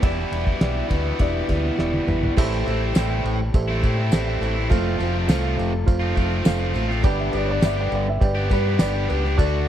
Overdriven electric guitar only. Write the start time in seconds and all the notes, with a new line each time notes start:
0.02 E2 B2 E3 G3 B3 E4
0.89 E2 B2 E3 G3 B3 E4
2.37 A2 E3 A3 C4 E4
2.66 E3 A3 C4 E4
2.95 A2 E3 A3 C4 E4
3.10 A3 C4 E4
3.25 muted overdriven electric guitar stroke
3.68 A3 C4 E4
3.82 E3 A3 C4 E4
4.12 A2 E3 A3 C4 E4
4.27 A3 C4 E4
4.42 E3 A3 C4 E4
4.56 A3 C4 E4
4.69 F2 C3 F3 A3 C4 F4
4.98 F3 A3 C4 F4
5.27 F2 C3 F3 A3 C4 F4
5.42 F3 A3 C4 F4
5.56 muted overdriven electric guitar stroke
6.00 F3 A3 C4 F4
6.15 F3 A3 C4 F4
6.44 F2 C3 F3 A3 C4 F4
6.59 F3 A3 C4 F4
6.74 F3 A3 C4 F4
6.89 F3 A3 C4 F4
7.03 G2 D3 G3 B3 D4 G4
7.33 G3 B3 D4 G4
7.62 G2 D3 G3 B3 D4 G4
7.76 G3 B3 D4 G4
7.92 muted overdriven electric guitar stroke
8.35 G3 B3 D4 G4
8.49 G3 B3 D4 G4
8.78 G2 D3 G3 B3 D4 G4
8.93 G3 B3 D4 G4
9.08 G3 B3 D4 G4
9.23 G3 B3 D4 G4
9.37 D3 A3 D4 F#4